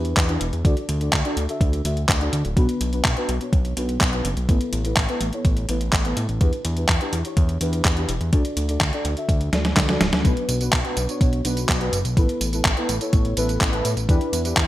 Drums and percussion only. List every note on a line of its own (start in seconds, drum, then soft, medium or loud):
0.05 closed hi-hat soft
0.17 kick loud
0.17 clap loud
0.17 closed hi-hat medium
0.29 closed hi-hat soft
0.41 closed hi-hat medium
0.53 closed hi-hat soft
0.65 kick loud
0.65 closed hi-hat medium
0.77 closed hi-hat soft
0.89 closed hi-hat medium
1.01 closed hi-hat soft
1.13 kick loud
1.13 clap loud
1.13 closed hi-hat medium
1.25 closed hi-hat soft
1.37 closed hi-hat medium
1.49 closed hi-hat soft
1.61 kick loud
1.61 closed hi-hat medium
1.73 closed hi-hat soft
1.85 closed hi-hat medium
1.97 closed hi-hat soft
2.09 kick loud
2.09 clap loud
2.09 closed hi-hat medium
2.21 closed hi-hat soft
2.33 closed hi-hat medium
2.45 closed hi-hat soft
2.57 kick loud
2.57 closed hi-hat medium
2.69 closed hi-hat soft
2.81 closed hi-hat medium
2.93 closed hi-hat soft
3.05 kick loud
3.05 clap loud
3.05 closed hi-hat medium
3.17 closed hi-hat soft
3.29 closed hi-hat medium
3.41 closed hi-hat soft
3.53 kick loud
3.53 closed hi-hat medium
3.65 closed hi-hat soft
3.77 closed hi-hat medium
3.89 closed hi-hat soft
4.01 kick loud
4.01 clap loud
4.01 closed hi-hat medium
4.13 closed hi-hat soft
4.25 closed hi-hat medium
4.37 closed hi-hat soft
4.49 kick loud
4.49 closed hi-hat medium
4.61 closed hi-hat soft
4.73 closed hi-hat medium
4.85 closed hi-hat soft
4.97 kick loud
4.97 clap loud
4.97 closed hi-hat medium
5.09 closed hi-hat soft
5.21 closed hi-hat medium
5.33 closed hi-hat soft
5.45 kick loud
5.45 closed hi-hat medium
5.57 closed hi-hat soft
5.69 closed hi-hat medium
5.81 closed hi-hat soft
5.93 kick medium
5.93 clap loud
5.93 closed hi-hat medium
6.05 closed hi-hat soft
6.17 closed hi-hat medium
6.29 closed hi-hat soft
6.41 kick loud
6.41 closed hi-hat medium
6.53 closed hi-hat soft
6.65 closed hi-hat medium
6.77 closed hi-hat soft
6.89 kick medium
6.89 clap loud
6.89 closed hi-hat medium
7.01 closed hi-hat soft
7.13 closed hi-hat medium
7.25 closed hi-hat soft
7.37 kick loud
7.37 closed hi-hat medium
7.49 closed hi-hat soft
7.61 closed hi-hat medium
7.73 closed hi-hat soft
7.85 kick medium
7.85 clap loud
7.85 closed hi-hat medium
7.97 closed hi-hat soft
8.09 closed hi-hat medium
8.21 closed hi-hat soft
8.33 kick loud
8.33 closed hi-hat medium
8.45 closed hi-hat soft
8.57 closed hi-hat medium
8.69 closed hi-hat soft
8.81 kick loud
8.81 clap loud
8.81 closed hi-hat medium
8.93 closed hi-hat soft
9.05 closed hi-hat medium
9.17 closed hi-hat soft
9.29 kick loud
9.29 closed hi-hat medium
9.41 closed hi-hat soft
9.53 snare medium
9.53 closed hi-hat medium
9.65 snare medium
9.65 closed hi-hat soft
9.77 kick medium
9.77 snare medium
9.77 clap loud
9.77 closed hi-hat medium
9.89 snare medium
9.89 closed hi-hat soft
10.01 snare medium
10.01 closed hi-hat medium
10.13 snare medium
10.13 closed hi-hat soft
10.25 kick loud
10.25 closed hi-hat medium
10.25 tambourine soft
10.37 closed hi-hat soft
10.49 closed hi-hat medium
10.49 tambourine medium
10.61 closed hi-hat soft
10.61 tambourine soft
10.73 kick loud
10.73 clap loud
10.73 closed hi-hat medium
10.73 tambourine soft
10.85 closed hi-hat soft
10.97 closed hi-hat medium
10.97 tambourine medium
11.09 closed hi-hat soft
11.09 tambourine soft
11.21 kick loud
11.21 closed hi-hat medium
11.21 tambourine soft
11.33 closed hi-hat soft
11.45 closed hi-hat medium
11.45 tambourine medium
11.57 closed hi-hat soft
11.57 tambourine soft
11.69 kick loud
11.69 clap loud
11.69 closed hi-hat medium
11.69 tambourine soft
11.81 closed hi-hat soft
11.93 closed hi-hat medium
11.93 tambourine medium
12.05 closed hi-hat soft
12.05 tambourine soft
12.17 kick loud
12.17 closed hi-hat medium
12.17 tambourine soft
12.29 closed hi-hat soft
12.41 closed hi-hat medium
12.41 tambourine medium
12.53 closed hi-hat soft
12.53 tambourine soft
12.65 kick loud
12.65 clap loud
12.65 closed hi-hat medium
12.65 tambourine soft
12.77 closed hi-hat soft
12.89 closed hi-hat medium
12.89 tambourine medium
13.01 closed hi-hat soft
13.01 tambourine soft
13.13 kick loud
13.13 closed hi-hat medium
13.13 tambourine soft
13.25 closed hi-hat soft
13.37 closed hi-hat medium
13.37 tambourine medium
13.49 closed hi-hat soft
13.49 tambourine soft
13.61 kick loud
13.61 clap loud
13.61 closed hi-hat medium
13.61 tambourine soft
13.73 closed hi-hat soft
13.85 closed hi-hat medium
13.85 tambourine medium
13.97 closed hi-hat soft
13.97 tambourine soft
14.09 kick loud
14.09 closed hi-hat medium
14.09 tambourine soft
14.21 closed hi-hat soft
14.33 closed hi-hat medium
14.33 tambourine medium
14.45 closed hi-hat soft
14.45 tambourine soft
14.57 kick loud
14.57 clap loud
14.57 closed hi-hat medium
14.57 tambourine soft